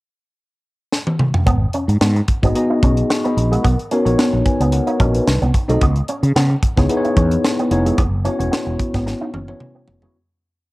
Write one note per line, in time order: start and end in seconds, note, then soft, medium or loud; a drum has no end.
0.92 snare medium
1.07 high tom medium
1.19 mid tom medium
1.34 floor tom medium
1.46 1.65 G#1 medium
1.46 1.56 B3 medium
1.46 kick medium
1.46 closed hi-hat medium
1.73 1.84 C#4 medium
1.73 closed hi-hat medium
1.88 1.97 G#2 medium
1.88 muted clean electric guitar stroke soft
1.88 closed hi-hat soft
2.01 2.20 G#2 medium
2.01 2.11 B3 medium
2.01 snare loud
2.16 muted clean electric guitar stroke soft
2.16 closed hi-hat soft
2.28 kick medium
2.28 closed hi-hat medium
2.43 2.52 G#1 medium
2.43 2.52 B3 medium
2.43 2.52 D#4 medium
2.43 2.52 F#4 medium
2.43 2.53 G#4 medium
2.43 2.53 D#5 medium
2.43 kick medium
2.43 closed hi-hat soft
2.55 3.16 B3 medium
2.55 3.16 D#4 medium
2.55 3.17 F#4 medium
2.55 3.17 G#4 medium
2.55 3.10 D#5 medium
2.55 muted clean electric guitar stroke soft
2.55 closed hi-hat medium
2.70 2.78 D#4 medium
2.83 3.01 B1 medium
2.83 2.93 C#4 medium
2.83 kick medium
2.83 closed hi-hat medium
2.97 closed hi-hat soft
3.10 3.24 C#6 medium
3.10 snare medium
3.24 3.33 B3 medium
3.24 3.51 D#5 medium
3.24 3.50 B5 medium
3.24 closed hi-hat soft
3.37 3.56 A#1 medium
3.37 muted clean electric guitar stroke soft
3.37 closed hi-hat medium
3.52 3.60 G#3 medium
3.52 3.78 A#4 soft
3.52 3.78 F#5 medium
3.52 closed hi-hat soft
3.64 3.75 B1 medium
3.64 3.74 B3 medium
3.64 kick medium
3.64 closed hi-hat medium
3.79 closed hi-hat soft
3.91 4.02 B3 medium
3.91 4.01 C#4 medium
3.91 4.02 D#4 medium
3.91 4.03 F#4 medium
3.91 4.03 A#4 medium
3.91 4.03 C#5 medium
3.91 closed hi-hat medium
4.05 4.14 A#1 medium
4.05 4.86 B3 medium
4.05 4.45 D#4 medium
4.05 4.46 F#4 medium
4.05 4.46 A#4 medium
4.05 4.46 C#5 medium
4.05 muted clean electric guitar stroke soft
4.05 closed hi-hat soft
4.18 4.28 B3 medium
4.18 snare loud
4.33 4.42 A#1 medium
4.33 muted clean electric guitar stroke soft
4.46 4.72 B4 medium
4.46 4.71 G#5 medium
4.46 kick medium
4.46 closed hi-hat medium
4.60 4.79 C#2 medium
4.60 4.69 B3 medium
4.60 closed hi-hat soft
4.72 4.87 A#4 medium
4.72 4.87 F#5 medium
4.72 muted clean electric guitar stroke soft
4.72 closed hi-hat medium
4.87 4.95 D#4 medium
4.87 4.99 C#5 medium
4.87 closed hi-hat soft
5.00 5.19 A#1 medium
5.00 5.10 C#4 medium
5.00 5.14 F#4 medium
5.00 5.14 D#5 medium
5.00 kick medium
5.00 closed hi-hat medium
5.15 5.41 D#4 medium
5.15 5.40 B4 medium
5.15 closed hi-hat medium
5.27 5.37 C2 medium
5.27 snare medium
5.42 5.50 C2 medium
5.42 5.50 B3 medium
5.42 closed hi-hat soft
5.54 muted clean electric guitar stroke soft
5.54 kick medium
5.54 closed hi-hat medium
5.68 5.78 B1 medium
5.68 5.78 A3 medium
5.68 5.81 C4 medium
5.68 5.81 D#4 medium
5.68 5.81 F#4 medium
5.68 5.81 A4 medium
5.68 5.81 D#5 loud
5.68 closed hi-hat medium
5.81 6.00 C#2 medium
5.81 5.92 B3 medium
5.81 kick medium
5.81 closed hi-hat medium
5.96 closed hi-hat soft
6.08 6.18 C#4 medium
6.08 closed hi-hat medium
6.23 6.31 C#3 medium
6.23 muted clean electric guitar stroke soft
6.23 closed hi-hat soft
6.36 6.54 C#3 medium
6.36 6.45 B3 medium
6.36 snare loud
6.50 muted clean electric guitar stroke soft
6.63 kick medium
6.63 closed hi-hat medium
6.77 6.86 C#2 medium
6.77 6.86 B3 medium
6.77 6.87 D#4 medium
6.77 6.87 E4 medium
6.77 6.87 G#4 medium
6.77 6.87 C#5 medium
6.77 kick medium
6.77 snare soft
6.77 closed hi-hat soft
6.89 7.50 B3 medium
6.89 7.50 D#4 medium
6.89 7.50 E4 medium
6.89 7.51 G#4 medium
6.89 6.97 B4 medium
6.89 muted clean electric guitar stroke soft
6.89 closed hi-hat medium
6.97 7.54 C#5 medium
7.05 7.13 D#4 medium
7.05 closed hi-hat soft
7.16 7.35 E2 medium
7.16 7.27 C#4 medium
7.16 kick medium
7.16 closed hi-hat medium
7.31 closed hi-hat medium
7.44 snare medium
7.59 7.67 B3 medium
7.59 closed hi-hat soft
7.71 7.90 F1 medium
7.71 7.98 B3 medium
7.71 7.98 D#4 medium
7.71 7.98 E4 medium
7.71 7.99 G#4 medium
7.71 7.99 C#5 medium
7.71 muted clean electric guitar stroke soft
7.71 closed hi-hat medium
7.86 7.94 G#3 medium
7.86 closed hi-hat medium
7.98 8.27 F#1 medium
7.98 8.08 B3 medium
7.98 kick medium
7.98 closed hi-hat medium
8.25 8.36 B3 medium
8.25 8.35 C#4 medium
8.25 8.36 C#4 medium
8.25 8.36 E4 medium
8.25 8.37 F#4 medium
8.25 8.37 C#5 medium
8.25 closed hi-hat medium
8.39 8.48 E1 medium
8.39 9.20 B3 medium
8.39 9.20 C#4 medium
8.39 9.20 E4 medium
8.39 9.20 F#4 medium
8.39 9.21 C#5 medium
8.39 muted clean electric guitar stroke soft
8.39 closed hi-hat soft
8.51 8.61 B3 medium
8.51 snare loud
8.66 8.75 E1 medium
8.66 muted clean electric guitar stroke soft
8.79 kick medium
8.79 closed hi-hat medium
8.94 9.13 G#1 medium
8.94 9.02 B3 medium
8.94 kick medium
8.94 snare soft
8.94 closed hi-hat soft
9.06 muted clean electric guitar stroke soft
9.06 snare soft
9.21 9.29 D#4 medium
9.33 9.52 F#1 medium
9.33 9.43 C#4 medium
9.33 high tom medium
9.48 9.87 B3 medium
9.48 9.87 C#4 medium
9.48 9.87 E4 medium
9.48 9.88 F#4 medium
9.48 9.88 C#5 medium
9.48 high tom medium
9.60 mid tom medium
9.75 9.83 B3 medium
9.88 10.06 F1 medium
9.88 muted clean electric guitar stroke soft
9.88 floor tom medium
10.02 10.11 G#3 medium
10.02 10.15 B3 medium
10.02 10.15 C#4 medium
10.02 10.15 E4 medium
10.02 10.15 F#4 medium
10.02 10.15 C#5 medium
10.02 floor tom medium